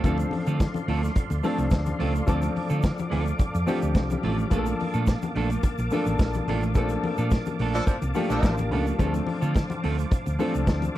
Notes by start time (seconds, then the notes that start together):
0.03 D2 F3 A3 C4 D4 F4 A4 D5 F5 C6, kick, closed hi-hat, muted conga, shaker
0.18 muted clean electric guitar stroke, closed hi-hat, muted conga, shaker
0.31 muted clean electric guitar stroke, open hi-hat, high conga
0.46 D3 A3 C4 F4 A4, closed hi-hat, shaker
0.60 kick, snare, closed hi-hat, muted conga, shaker
0.74 muted clean electric guitar stroke, closed hi-hat, muted conga, high conga, shaker
0.88 D2 A3 C4 F4 A4, open hi-hat, low conga
1.03 muted clean electric guitar stroke, snare, closed hi-hat, shaker
1.15 muted clean electric guitar stroke, kick, closed hi-hat, muted conga, low conga, shaker
1.30 D2, muted clean electric guitar stroke, closed hi-hat, muted conga, shaker
1.43 F3 A3 C4 D4 F4 A4, open hi-hat, high conga, shaker
1.58 C2, muted clean electric guitar stroke, closed hi-hat, shaker
1.70 D2, muted clean electric guitar stroke, kick, snare, closed hi-hat, muted conga, shaker
1.86 muted clean electric guitar stroke, closed hi-hat, high conga, shaker
1.99 C#2 A3 C4 F4 A4, open hi-hat, low conga
2.15 muted clean electric guitar stroke, closed hi-hat, shaker
2.27 D2 F3 A3 C4 D4 F4 A4 D6, kick, closed hi-hat, muted conga, shaker
2.42 muted clean electric guitar stroke, closed hi-hat, muted conga, shaker
2.55 muted clean electric guitar stroke, open hi-hat, high conga
2.70 D3 A3 C4 F4 A4, closed hi-hat, shaker
2.83 muted clean electric guitar stroke, kick, snare, closed hi-hat, muted conga, shaker
2.97 muted clean electric guitar stroke, closed hi-hat, muted conga, high conga, shaker
3.10 D2 A3 C4 F4 A4, open hi-hat, low conga
3.25 muted clean electric guitar stroke, closed hi-hat, shaker
3.39 muted clean electric guitar stroke, kick, closed hi-hat, low conga, shaker
3.54 F2, muted clean electric guitar stroke, closed hi-hat, muted conga, shaker
3.67 F3 A3 C4 D4 F4 G4 A4, open hi-hat, high conga, shaker
3.81 D2, muted clean electric guitar stroke, closed hi-hat, shaker
3.95 C2, kick, snare, closed hi-hat, muted conga, shaker
4.10 muted clean electric guitar stroke, closed hi-hat, high conga, shaker
4.23 A1 A3 C4 F4 A4, open hi-hat, low conga
4.38 muted clean electric guitar stroke, closed hi-hat, shaker
4.50 A#1 F3 A3 A#3 D4 F4 G#4 A4 A5, kick, closed hi-hat, muted conga, shaker
4.58 A4
4.66 muted clean electric guitar stroke, closed hi-hat, muted conga, shaker
4.80 muted clean electric guitar stroke, open hi-hat, high conga
4.93 A#2 A3 D4 F4 A4, closed hi-hat, shaker
5.07 kick, snare, closed hi-hat, muted conga, shaker
5.22 muted clean electric guitar stroke, closed hi-hat, muted conga, high conga, shaker
5.35 A#1 A3 D4 F4 A4, open hi-hat, low conga
5.50 muted clean electric guitar stroke, closed hi-hat, shaker
5.63 muted clean electric guitar stroke, kick, closed hi-hat, muted conga, low conga, shaker
5.78 A#1, muted clean electric guitar stroke, closed hi-hat, shaker
5.91 F3 A3 A#3 D4 F4 A4, open hi-hat, high conga, shaker
6.06 A1, muted clean electric guitar stroke, closed hi-hat, shaker
6.19 A#1, muted clean electric guitar stroke, kick, snare, closed hi-hat, muted conga, shaker
6.34 muted clean electric guitar stroke, closed hi-hat, high conga, shaker
6.47 A1 A3 D4 F4 A4, open hi-hat, low conga
6.63 muted clean electric guitar stroke, closed hi-hat, shaker
6.75 A#1 F3 A3 A#3 C4 D4 F4 A4, kick, closed hi-hat, muted conga, shaker
6.83 D4
6.89 muted clean electric guitar stroke, closed hi-hat, muted conga, shaker
7.04 muted clean electric guitar stroke, open hi-hat, high conga
7.18 A#2 A3 D4 F4 A4, closed hi-hat, shaker
7.31 muted clean electric guitar stroke, kick, snare, closed hi-hat, muted conga, shaker
7.46 muted clean electric guitar stroke, closed hi-hat, muted conga, high conga, shaker
7.59 A#1 A3 D4 F4 A4, open hi-hat, low conga
7.74 F3 D4 A4, muted clean electric guitar stroke, closed hi-hat, shaker
7.87 F3 D4 A4, muted clean electric guitar stroke, kick, closed hi-hat, low conga, shaker
8.02 C2, muted clean electric guitar stroke, closed hi-hat, muted conga, shaker
8.15 F3 A3 A#3 D4 F4 G4 A4, open hi-hat, high conga, shaker
8.30 A#1 F3 D4 A4, muted clean electric guitar stroke, closed hi-hat, shaker
8.43 A1, kick, snare, closed hi-hat, muted conga, shaker
8.58 muted clean electric guitar stroke, closed hi-hat, muted conga, high conga, shaker
8.71 C#2 A3 D4 F4 A4, open hi-hat, low conga
8.87 muted clean electric guitar stroke, closed hi-hat, shaker
8.98 D2 F3 A3 C4 D4 F4 G#4 A4 C5, kick, closed hi-hat, muted conga, shaker
9.06 A4
9.14 muted clean electric guitar stroke, closed hi-hat, muted conga, shaker
9.27 muted clean electric guitar stroke, open hi-hat, high conga
9.41 D3 A3 C4 F4 A4, closed hi-hat, shaker
9.55 kick, snare, closed hi-hat, muted conga, shaker
9.70 muted clean electric guitar stroke, closed hi-hat, muted conga, high conga, shaker
9.83 D2 A3 C4 F4 A4, open hi-hat, low conga
9.98 muted clean electric guitar stroke, closed hi-hat, shaker
10.11 muted clean electric guitar stroke, kick, closed hi-hat, muted conga, low conga, shaker
10.26 D2, muted clean electric guitar stroke, closed hi-hat, muted conga, shaker
10.39 F3 A3 C4 D4 F4 A4, open hi-hat, high conga, shaker
10.54 C2, muted clean electric guitar stroke, closed hi-hat, shaker
10.67 D2, muted clean electric guitar stroke, kick, snare, closed hi-hat, muted conga, shaker
10.82 muted clean electric guitar stroke, closed hi-hat, muted conga, high conga, shaker